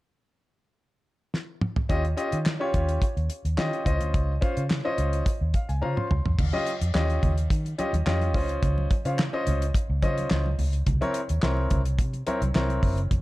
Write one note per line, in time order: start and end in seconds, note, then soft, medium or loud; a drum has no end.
1.34 snare medium
1.61 mid tom medium
1.76 floor tom loud
1.89 2.13 D#2 loud
1.89 2.02 C#4 medium
1.89 2.02 F4 medium
1.89 2.03 G4 medium
1.89 2.03 D#5 loud
1.89 kick loud
1.89 closed hi-hat medium
2.05 closed hi-hat soft
2.17 2.36 C#4 medium
2.17 2.36 F4 medium
2.17 2.36 G4 medium
2.17 2.36 D#5 loud
2.17 closed hi-hat medium
2.32 2.56 D#3 medium
2.32 closed hi-hat medium
2.46 snare loud
2.46 clap loud
2.60 3.02 C#4 medium
2.60 3.02 F4 medium
2.60 3.02 G4 medium
2.60 3.02 C#5 loud
2.74 2.97 D#2 medium
2.74 kick medium
2.74 closed hi-hat medium
2.89 closed hi-hat soft
3.02 kick loud
3.02 closed hi-hat medium
3.17 3.28 D#2 medium
3.17 closed hi-hat soft
3.30 closed hi-hat medium
3.45 3.56 D#2 medium
3.45 closed hi-hat soft
3.57 3.70 D#3 medium
3.57 3.82 C#4 medium
3.57 3.82 F4 medium
3.57 3.82 G4 medium
3.57 3.82 D#5 loud
3.57 snare loud
3.57 clap medium
3.73 closed hi-hat soft
3.85 3.98 C#2 loud
3.85 4.31 C#4 medium
3.85 4.31 F4 medium
3.85 4.31 C5 medium
3.85 4.31 D#5 loud
3.85 kick medium
3.85 closed hi-hat medium
4.01 4.12 D2 medium
4.01 closed hi-hat soft
4.14 4.37 C#2 loud
4.14 kick loud
4.14 closed hi-hat medium
4.41 4.60 C#4 medium
4.41 4.60 F4 medium
4.41 4.61 C5 medium
4.41 4.61 F5 medium
4.41 kick loud
4.41 closed hi-hat medium
4.57 4.80 C#3 medium
4.57 closed hi-hat medium
4.70 snare loud
4.70 clap medium
4.85 5.26 C#4 medium
4.85 5.26 F4 medium
4.85 5.26 C5 medium
4.85 5.27 D#5 loud
4.98 5.21 C#2 medium
4.98 closed hi-hat medium
5.13 closed hi-hat medium
5.26 kick loud
5.26 closed hi-hat loud
5.41 5.52 D#2 medium
5.54 5.68 F5 medium
5.54 kick medium
5.54 closed hi-hat medium
5.69 5.80 C#2 medium
5.69 5.81 G#5 medium
5.69 closed hi-hat soft
5.81 5.94 C#3 medium
5.81 6.06 C#4 medium
5.81 6.06 F4 medium
5.81 6.06 C5 medium
5.81 6.07 F5 medium
5.81 5.96 A#5 medium
5.81 high tom soft
5.97 6.35 C6 medium
5.97 mid tom medium
6.11 6.23 C#2 medium
6.11 mid tom medium
6.25 6.36 E2 medium
6.25 floor tom medium
6.39 6.51 D#2 loud
6.39 kick loud
6.39 crash medium
6.39 muted conga soft
6.39 low conga medium
6.53 6.71 C#4 medium
6.53 6.71 F4 medium
6.53 6.71 G4 medium
6.53 6.71 D#5 loud
6.53 muted conga soft
6.53 high conga medium
6.66 closed hi-hat medium
6.81 6.92 F2 medium
6.81 closed hi-hat medium
6.94 7.18 D#2 medium
6.94 7.31 C#4 medium
6.94 7.31 F4 medium
6.94 7.31 G4 medium
6.94 7.31 D#5 medium
6.94 snare loud
6.94 clap medium
7.10 closed hi-hat soft
7.23 7.46 D#2 medium
7.23 kick medium
7.23 closed hi-hat medium
7.23 low conga medium
7.37 closed hi-hat medium
7.50 7.73 D#3 medium
7.50 kick loud
7.50 closed hi-hat medium
7.65 closed hi-hat soft
7.65 muted conga soft
7.78 7.91 C#4 medium
7.78 7.91 F4 medium
7.78 7.91 G4 medium
7.78 7.92 D#5 medium
7.78 closed hi-hat medium
7.78 high conga medium
7.93 8.04 D#2 medium
7.93 closed hi-hat soft
7.93 high conga medium
8.06 8.34 F2 medium
8.06 8.33 C#4 medium
8.06 8.33 F4 medium
8.06 8.35 G4 medium
8.06 8.34 D#5 medium
8.06 snare loud
8.06 clap medium
8.06 muted conga soft
8.21 closed hi-hat soft
8.21 high conga soft
8.34 8.58 C#2 loud
8.34 8.91 C#4 medium
8.34 8.91 F4 medium
8.34 8.91 C5 medium
8.34 8.91 D#5 medium
8.34 kick loud
8.34 open hi-hat medium
8.34 low conga medium
8.49 closed hi-hat medium
8.62 8.86 C#2 loud
8.62 kick loud
8.62 closed hi-hat medium
8.62 low conga medium
8.78 muted conga soft
8.78 high conga medium
8.90 kick medium
8.90 closed hi-hat medium
9.05 9.28 C#3 medium
9.05 9.17 C#4 medium
9.05 9.17 F4 medium
9.05 9.17 C5 medium
9.05 9.17 F5 medium
9.05 closed hi-hat medium
9.19 snare loud
9.19 clap medium
9.19 muted conga soft
9.33 9.63 C#4 medium
9.33 9.63 F4 medium
9.33 9.64 C5 medium
9.33 9.64 D#5 loud
9.33 muted conga soft
9.47 9.70 C#2 loud
9.47 closed hi-hat medium
9.47 low conga medium
9.62 closed hi-hat medium
9.74 kick loud
9.74 closed hi-hat loud
9.74 muted conga soft
9.89 10.00 C#2 loud
10.02 10.26 C#3 loud
10.02 10.46 C#4 medium
10.02 10.46 F4 medium
10.02 10.46 C5 medium
10.02 10.46 D#5 medium
10.02 kick medium
10.02 closed hi-hat medium
10.02 high conga medium
10.18 closed hi-hat soft
10.18 high conga medium
10.30 10.54 C#2 medium
10.30 snare loud
10.30 clap medium
10.30 muted conga soft
10.46 high conga medium
10.58 10.82 C#2 loud
10.58 open hi-hat medium
10.58 low conga medium
10.73 closed hi-hat medium
10.86 10.99 C2 loud
10.86 kick medium
10.86 closed hi-hat medium
10.86 muted conga soft
10.86 low conga medium
11.01 11.19 C4 medium
11.01 11.19 E4 medium
11.01 11.19 A#4 medium
11.01 11.19 C#5 loud
11.01 closed hi-hat soft
11.01 muted conga soft
11.01 high conga medium
11.14 closed hi-hat medium
11.29 11.41 D#2 medium
11.29 closed hi-hat medium
11.42 11.66 C2 medium
11.42 11.80 C4 medium
11.42 11.80 E4 medium
11.42 11.80 A#4 medium
11.42 11.80 C#5 loud
11.42 snare loud
11.42 clap medium
11.57 muted conga soft
11.70 12.00 C2 loud
11.70 kick medium
11.70 closed hi-hat medium
11.70 low conga medium
11.85 closed hi-hat medium
11.99 12.22 C3 medium
11.99 kick loud
11.99 closed hi-hat loud
11.99 muted conga soft
12.13 closed hi-hat soft
12.13 muted conga soft
12.27 12.40 C4 medium
12.27 12.40 E4 medium
12.27 12.40 A#4 medium
12.27 12.40 C#5 medium
12.27 closed hi-hat medium
12.27 high conga medium
12.41 12.52 C2 medium
12.41 closed hi-hat soft
12.41 high conga medium
12.55 12.78 C2 medium
12.55 12.98 C4 medium
12.55 12.98 E4 medium
12.55 12.98 A#4 medium
12.55 12.98 C#5 loud
12.55 snare loud
12.55 clap medium
12.69 closed hi-hat soft
12.69 muted conga soft
12.69 high conga medium
12.83 13.06 F#1 medium
12.83 kick medium
12.83 open hi-hat medium
12.83 low conga medium
12.98 closed hi-hat medium
13.11 13.21 F1 loud
13.11 kick loud
13.11 closed hi-hat medium
13.11 muted conga soft
13.11 low conga medium